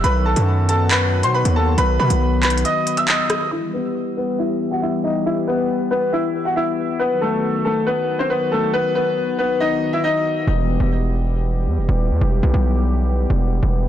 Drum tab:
HH |x--------x--------x-----x--------x-----x--------|x--------x--------x-x-x-x-----x--x--x-----x-----|------------------------------------------------|------------------------------------------------|
CP |------------------------x-----------------------|------------------x-----------------x-----------|------------------------------------------------|------------------------------------------------|
SD |------------------------------------------------|------------------------------------------r-----|------------------------------------------------|------------------------------------------------|

HH |------------------------------------------------|------------------------------------------------|------------------------------------------------|------------------------------------------------|
CP |------------------------------------------------|------------------------------------------------|------------------------------------------------|------------------------------------------------|
SD |------------------------------------------------|------------------------------------------------|------------------------------------------------|------------------------------------------------|